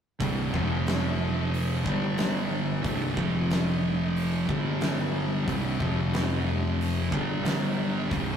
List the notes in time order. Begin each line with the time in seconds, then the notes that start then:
0.20 C1 C2 G2 C3, kick, open hi-hat
0.54 F1 F2 C3 F3, kick
0.87 snare, open hi-hat
1.54 open hi-hat
1.84 G1 G2 D3 G3, kick
2.18 snare, open hi-hat
2.83 C1 C2 G2 C3, kick, open hi-hat
3.16 F1 F2 C3 F3, kick
3.50 snare, open hi-hat
4.16 open hi-hat
4.47 G1 G2 D3 G3, kick
4.81 snare, open hi-hat
5.46 C1 C2 G2 C3, kick, open hi-hat
5.79 F1 F2 C3 F3, kick
6.14 snare, open hi-hat
6.81 open hi-hat
7.11 G1 G2 D3 G3, kick
7.42 G1 G2 D3 G3, open hi-hat
7.46 snare
8.09 C1 C2 G2 C3, kick, open hi-hat